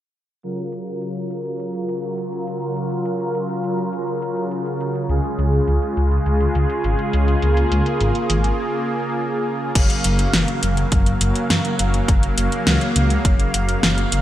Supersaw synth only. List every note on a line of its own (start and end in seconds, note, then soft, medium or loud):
0.43 9.71 C#3 medium
0.43 5.05 F#3 medium
0.43 5.05 F4 medium
0.43 5.05 A#4 medium
5.09 7.40 G#3 medium
5.09 9.71 F4 medium
5.09 9.71 G#4 medium
7.42 9.73 A#3 medium
9.75 14.22 C#3 medium
9.75 14.22 F#3 medium
9.75 14.22 A#3 medium
9.75 14.22 F5 medium